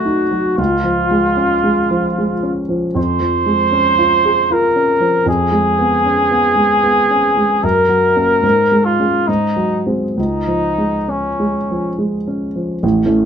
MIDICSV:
0, 0, Header, 1, 3, 480
1, 0, Start_track
1, 0, Key_signature, -5, "major"
1, 0, Tempo, 794702
1, 353, Time_signature, 3, 2, 24, 8
1, 1793, Tempo, 772201
1, 4193, Tempo, 804290
1, 5153, Tempo, 840336
1, 5633, Tempo, 902256
1, 7073, Tempo, 843882
1, 7553, Tempo, 745342
1, 7826, End_track
2, 0, Start_track
2, 0, Title_t, "Trumpet"
2, 0, Program_c, 0, 56
2, 0, Note_on_c, 0, 66, 47
2, 343, Note_off_c, 0, 66, 0
2, 346, Note_on_c, 0, 65, 58
2, 1526, Note_off_c, 0, 65, 0
2, 1791, Note_on_c, 0, 72, 73
2, 2759, Note_on_c, 0, 70, 56
2, 2768, Note_off_c, 0, 72, 0
2, 3225, Note_off_c, 0, 70, 0
2, 3234, Note_on_c, 0, 68, 70
2, 4672, Note_on_c, 0, 70, 63
2, 4681, Note_off_c, 0, 68, 0
2, 5386, Note_on_c, 0, 65, 54
2, 5395, Note_off_c, 0, 70, 0
2, 5632, Note_on_c, 0, 63, 51
2, 5640, Note_off_c, 0, 65, 0
2, 5943, Note_off_c, 0, 63, 0
2, 6113, Note_on_c, 0, 63, 53
2, 6599, Note_on_c, 0, 61, 40
2, 6607, Note_off_c, 0, 63, 0
2, 7074, Note_off_c, 0, 61, 0
2, 7826, End_track
3, 0, Start_track
3, 0, Title_t, "Grand piano"
3, 0, Program_c, 1, 0
3, 0, Control_c, 1, 64, 127
3, 0, Note_on_c, 1, 36, 33
3, 0, Note_on_c, 1, 54, 28
3, 0, Note_on_c, 1, 57, 29
3, 0, Note_on_c, 1, 63, 29
3, 32, Note_off_c, 1, 63, 0
3, 32, Note_on_c, 1, 63, 31
3, 126, Note_off_c, 1, 57, 0
3, 188, Note_off_c, 1, 54, 0
3, 188, Note_on_c, 1, 54, 28
3, 288, Note_off_c, 1, 63, 0
3, 331, Note_off_c, 1, 36, 0
3, 350, Note_on_c, 1, 37, 37
3, 351, Note_off_c, 1, 54, 0
3, 364, Control_c, 1, 64, 0
3, 455, Control_c, 1, 64, 127
3, 506, Note_on_c, 1, 53, 30
3, 670, Note_on_c, 1, 56, 32
3, 767, Note_off_c, 1, 53, 0
3, 825, Note_on_c, 1, 61, 34
3, 928, Note_off_c, 1, 56, 0
3, 988, Note_on_c, 1, 56, 34
3, 1086, Note_off_c, 1, 61, 0
3, 1152, Note_on_c, 1, 53, 31
3, 1247, Note_off_c, 1, 56, 0
3, 1319, Note_on_c, 1, 56, 31
3, 1408, Note_off_c, 1, 53, 0
3, 1468, Note_on_c, 1, 61, 31
3, 1572, Note_off_c, 1, 56, 0
3, 1624, Note_on_c, 1, 53, 30
3, 1727, Note_off_c, 1, 61, 0
3, 1768, Note_off_c, 1, 37, 0
3, 1780, Note_on_c, 1, 41, 39
3, 1788, Note_off_c, 1, 53, 0
3, 1806, Control_c, 1, 64, 0
3, 1918, Control_c, 1, 64, 127
3, 1937, Note_on_c, 1, 53, 31
3, 2100, Note_on_c, 1, 56, 33
3, 2204, Note_off_c, 1, 53, 0
3, 2260, Note_on_c, 1, 61, 35
3, 2365, Note_off_c, 1, 56, 0
3, 2423, Note_on_c, 1, 65, 35
3, 2525, Note_off_c, 1, 61, 0
3, 2591, Note_on_c, 1, 68, 37
3, 2685, Note_off_c, 1, 65, 0
3, 2748, Note_on_c, 1, 65, 34
3, 2846, Note_off_c, 1, 68, 0
3, 2905, Note_on_c, 1, 61, 32
3, 3001, Note_off_c, 1, 65, 0
3, 3056, Note_on_c, 1, 53, 31
3, 3157, Note_off_c, 1, 61, 0
3, 3192, Note_off_c, 1, 41, 0
3, 3217, Note_on_c, 1, 41, 42
3, 3218, Note_off_c, 1, 53, 0
3, 3235, Control_c, 1, 64, 0
3, 3334, Control_c, 1, 64, 127
3, 3377, Note_on_c, 1, 56, 31
3, 3546, Note_on_c, 1, 59, 32
3, 3639, Note_off_c, 1, 56, 0
3, 3712, Note_on_c, 1, 61, 32
3, 3805, Note_off_c, 1, 59, 0
3, 3870, Note_on_c, 1, 59, 35
3, 3968, Note_off_c, 1, 61, 0
3, 4024, Note_on_c, 1, 56, 30
3, 4129, Note_off_c, 1, 59, 0
3, 4196, Note_on_c, 1, 59, 32
3, 4285, Note_off_c, 1, 56, 0
3, 4357, Note_on_c, 1, 61, 33
3, 4449, Note_off_c, 1, 59, 0
3, 4515, Note_on_c, 1, 56, 29
3, 4611, Note_off_c, 1, 61, 0
3, 4646, Note_off_c, 1, 41, 0
3, 4672, Note_on_c, 1, 42, 39
3, 4674, Note_off_c, 1, 56, 0
3, 4684, Control_c, 1, 64, 0
3, 4787, Control_c, 1, 64, 127
3, 4823, Note_on_c, 1, 54, 31
3, 4988, Note_on_c, 1, 61, 28
3, 4989, Note_on_c, 1, 58, 28
3, 5084, Note_off_c, 1, 54, 0
3, 5135, Note_off_c, 1, 61, 0
3, 5136, Note_off_c, 1, 58, 0
3, 5139, Note_off_c, 1, 42, 0
3, 5147, Note_on_c, 1, 44, 37
3, 5164, Control_c, 1, 64, 0
3, 5266, Control_c, 1, 64, 127
3, 5312, Note_on_c, 1, 56, 29
3, 5465, Note_off_c, 1, 56, 0
3, 5473, Note_on_c, 1, 56, 28
3, 5475, Note_on_c, 1, 61, 26
3, 5616, Note_off_c, 1, 44, 0
3, 5619, Note_off_c, 1, 56, 0
3, 5620, Note_off_c, 1, 61, 0
3, 5636, Note_on_c, 1, 44, 34
3, 5643, Control_c, 1, 64, 0
3, 5724, Control_c, 1, 64, 127
3, 5785, Note_on_c, 1, 54, 27
3, 5946, Note_on_c, 1, 56, 25
3, 5946, Note_on_c, 1, 60, 26
3, 6042, Note_off_c, 1, 54, 0
3, 6092, Note_off_c, 1, 56, 0
3, 6092, Note_off_c, 1, 60, 0
3, 6096, Note_off_c, 1, 44, 0
3, 6109, Note_on_c, 1, 37, 33
3, 6119, Control_c, 1, 64, 0
3, 6224, Control_c, 1, 64, 127
3, 6266, Note_on_c, 1, 53, 25
3, 6432, Note_on_c, 1, 56, 25
3, 6531, Note_off_c, 1, 53, 0
3, 6592, Note_on_c, 1, 61, 27
3, 6694, Note_off_c, 1, 56, 0
3, 6760, Note_on_c, 1, 56, 29
3, 6852, Note_off_c, 1, 61, 0
3, 6925, Note_on_c, 1, 53, 24
3, 7012, Note_off_c, 1, 56, 0
3, 7073, Note_on_c, 1, 56, 26
3, 7177, Note_off_c, 1, 53, 0
3, 7238, Note_on_c, 1, 61, 25
3, 7340, Note_off_c, 1, 56, 0
3, 7398, Note_on_c, 1, 53, 25
3, 7496, Note_off_c, 1, 61, 0
3, 7532, Note_off_c, 1, 37, 0
3, 7551, Note_off_c, 1, 53, 0
3, 7554, Note_on_c, 1, 33, 43
3, 7566, Control_c, 1, 64, 0
3, 7670, Control_c, 1, 64, 127
3, 7697, Note_on_c, 1, 52, 34
3, 7700, Note_on_c, 1, 57, 34
3, 7706, Note_on_c, 1, 61, 36
3, 7709, Note_off_c, 1, 33, 0
3, 7826, Note_off_c, 1, 52, 0
3, 7826, Note_off_c, 1, 57, 0
3, 7826, Note_off_c, 1, 61, 0
3, 7826, End_track
0, 0, End_of_file